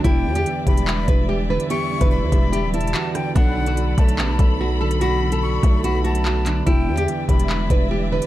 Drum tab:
HH |x--------x--x-----x--x--------x--------------x--|x--------x--------x-----x-----x-x-x-------x-----|x--------x--x-----x--x--------x--------------x--|x--------x--------x-----x-----x--x--------x-----|
CP |------------------------x-----------------------|------------------------------------x-----------|------------------------x-----------------------|------------------------------------x-----x-----|
SD |------------------------------------------------|------------------------------------------r-----|------------------------------------------------|------------------------------------------------|
BD |o-----------------o-----------o-----------------|---------o--------o-----------------------------|o-----------------o-----------o-----------------|------------------o-----------------------------|

HH |x--------x--x-----x--x--------x--------------x--|
CP |------------------------x-----------------------|
SD |------------------------------------------------|
BD |o-----------------o-----------o-----------------|